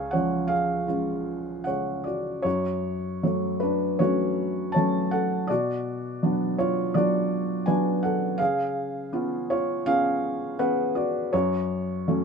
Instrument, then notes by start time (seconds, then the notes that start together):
felt piano
Already playing: C#2 G#4 C#5 F5 G#5
0.11 F3 G#3 C#4 C#5 F#5
0.48 G#4 F5
0.87 G#3 C#4 F4
1.64 C#3 G#3 G#4 C#5 F#5
2.04 F#4 D5
2.42 F#2 F#4 C#5
3.23 F#3 A3 C#5
3.60 D4 B4
3.99 F#3 A3 C#4 F#4 C#5
4.72 C#5 A5
4.76 F#3 A3 C#4
5.11 A4 F#5
5.47 B2 F#4 D5
6.23 F#3 B3 D4
6.58 F4 C#5
6.94 F#3 B3 D4 F#4 D5
7.66 F#3 B3 D4 B4 G#5
8.03 A4 F#5
8.38 C#3 G#4 F5
9.13 B3 C#4 F4
9.50 F4 C#5
9.86 B3 C#4 F4 G#4 F5
10.59 B3 C#4 G#4 B4 F#5
10.95 F#4 D5
11.33 F#2 F#4 C#5
12.08 F#3 A3 C#4